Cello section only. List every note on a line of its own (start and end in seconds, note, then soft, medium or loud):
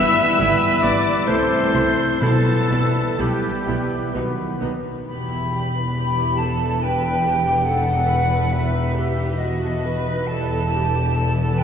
0.39 0.47 G2 medium
0.82 0.90 G2 medium
1.27 1.35 C3 medium
1.73 1.81 C3 medium
2.21 2.29 B2 medium
2.71 2.79 B2 medium
3.19 3.27 B2 soft
3.68 3.76 B2 soft
4.14 4.22 B2 soft
4.63 4.71 B2 soft
5.08 10.26 E2 soft
10.30 11.64 E2 soft